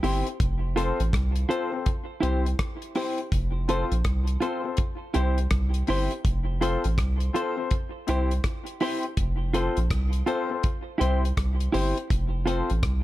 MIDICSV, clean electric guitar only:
0, 0, Header, 1, 3, 480
1, 0, Start_track
1, 0, Key_signature, -1, "major"
1, 0, Tempo, 731440
1, 259, Time_signature, 4, 2, 24, 8
1, 8554, End_track
2, 0, Start_track
2, 0, Title_t, "Clean electric guitar"
2, 0, Program_c, 0, 27
2, 20, Note_on_c, 0, 64, 81
2, 24, Note_on_c, 0, 67, 88
2, 32, Note_on_c, 0, 72, 88
2, 174, Note_off_c, 0, 64, 0
2, 176, Note_off_c, 0, 67, 0
2, 180, Note_off_c, 0, 72, 0
2, 499, Note_on_c, 0, 65, 79
2, 504, Note_on_c, 0, 69, 82
2, 512, Note_on_c, 0, 72, 79
2, 653, Note_off_c, 0, 65, 0
2, 656, Note_off_c, 0, 69, 0
2, 660, Note_off_c, 0, 72, 0
2, 976, Note_on_c, 0, 65, 78
2, 981, Note_on_c, 0, 69, 89
2, 985, Note_on_c, 0, 72, 93
2, 1121, Note_off_c, 0, 72, 0
2, 1129, Note_off_c, 0, 69, 0
2, 1132, Note_off_c, 0, 65, 0
2, 1447, Note_on_c, 0, 64, 84
2, 1456, Note_on_c, 0, 67, 82
2, 1460, Note_on_c, 0, 72, 81
2, 1607, Note_off_c, 0, 64, 0
2, 1612, Note_off_c, 0, 67, 0
2, 1614, Note_off_c, 0, 72, 0
2, 1940, Note_on_c, 0, 64, 74
2, 1943, Note_on_c, 0, 67, 82
2, 1950, Note_on_c, 0, 72, 93
2, 2094, Note_off_c, 0, 64, 0
2, 2095, Note_off_c, 0, 67, 0
2, 2099, Note_off_c, 0, 72, 0
2, 2420, Note_on_c, 0, 65, 72
2, 2424, Note_on_c, 0, 69, 70
2, 2427, Note_on_c, 0, 72, 84
2, 2574, Note_off_c, 0, 65, 0
2, 2576, Note_off_c, 0, 69, 0
2, 2578, Note_off_c, 0, 72, 0
2, 2891, Note_on_c, 0, 65, 81
2, 2901, Note_on_c, 0, 69, 87
2, 2902, Note_on_c, 0, 72, 90
2, 3037, Note_off_c, 0, 72, 0
2, 3046, Note_off_c, 0, 69, 0
2, 3049, Note_off_c, 0, 65, 0
2, 3372, Note_on_c, 0, 64, 82
2, 3378, Note_on_c, 0, 67, 79
2, 3383, Note_on_c, 0, 72, 79
2, 3530, Note_off_c, 0, 64, 0
2, 3533, Note_off_c, 0, 67, 0
2, 3535, Note_off_c, 0, 72, 0
2, 3861, Note_on_c, 0, 64, 83
2, 3866, Note_on_c, 0, 67, 82
2, 3872, Note_on_c, 0, 72, 102
2, 4014, Note_off_c, 0, 64, 0
2, 4017, Note_off_c, 0, 67, 0
2, 4020, Note_off_c, 0, 72, 0
2, 4339, Note_on_c, 0, 65, 71
2, 4343, Note_on_c, 0, 69, 75
2, 4350, Note_on_c, 0, 72, 84
2, 4493, Note_off_c, 0, 65, 0
2, 4495, Note_off_c, 0, 69, 0
2, 4499, Note_off_c, 0, 72, 0
2, 4820, Note_on_c, 0, 65, 79
2, 4828, Note_on_c, 0, 69, 86
2, 4830, Note_on_c, 0, 72, 80
2, 4964, Note_off_c, 0, 72, 0
2, 4972, Note_off_c, 0, 69, 0
2, 4973, Note_off_c, 0, 65, 0
2, 5307, Note_on_c, 0, 64, 85
2, 5310, Note_on_c, 0, 67, 90
2, 5317, Note_on_c, 0, 72, 91
2, 5457, Note_off_c, 0, 64, 0
2, 5458, Note_off_c, 0, 67, 0
2, 5462, Note_off_c, 0, 72, 0
2, 5780, Note_on_c, 0, 64, 88
2, 5785, Note_on_c, 0, 67, 91
2, 5791, Note_on_c, 0, 72, 105
2, 5934, Note_off_c, 0, 64, 0
2, 5936, Note_off_c, 0, 67, 0
2, 5939, Note_off_c, 0, 72, 0
2, 6257, Note_on_c, 0, 65, 81
2, 6264, Note_on_c, 0, 69, 73
2, 6270, Note_on_c, 0, 72, 82
2, 6412, Note_off_c, 0, 65, 0
2, 6415, Note_off_c, 0, 69, 0
2, 6418, Note_off_c, 0, 72, 0
2, 6735, Note_on_c, 0, 65, 81
2, 6743, Note_on_c, 0, 69, 78
2, 6745, Note_on_c, 0, 72, 88
2, 6878, Note_off_c, 0, 72, 0
2, 6886, Note_off_c, 0, 69, 0
2, 6891, Note_off_c, 0, 65, 0
2, 7206, Note_on_c, 0, 64, 69
2, 7212, Note_on_c, 0, 67, 82
2, 7222, Note_on_c, 0, 72, 83
2, 7366, Note_off_c, 0, 64, 0
2, 7369, Note_off_c, 0, 67, 0
2, 7374, Note_off_c, 0, 72, 0
2, 7694, Note_on_c, 0, 64, 85
2, 7700, Note_on_c, 0, 67, 82
2, 7705, Note_on_c, 0, 72, 105
2, 7850, Note_off_c, 0, 64, 0
2, 7853, Note_off_c, 0, 67, 0
2, 7855, Note_off_c, 0, 72, 0
2, 8174, Note_on_c, 0, 65, 83
2, 8181, Note_on_c, 0, 69, 84
2, 8189, Note_on_c, 0, 72, 91
2, 8330, Note_off_c, 0, 65, 0
2, 8333, Note_off_c, 0, 69, 0
2, 8337, Note_off_c, 0, 72, 0
2, 8554, End_track
3, 0, Start_track
3, 0, Title_t, "Muted clean electric guitar strokes"
3, 1129, Note_on_c, 9, 29, 57
3, 1195, Note_off_c, 9, 29, 0
3, 3045, Note_on_c, 9, 29, 51
3, 3111, Note_off_c, 9, 29, 0
3, 4972, Note_on_c, 9, 29, 42
3, 5038, Note_off_c, 9, 29, 0
3, 6886, Note_on_c, 9, 29, 40
3, 6951, Note_off_c, 9, 29, 0
3, 8554, End_track
0, 0, End_of_file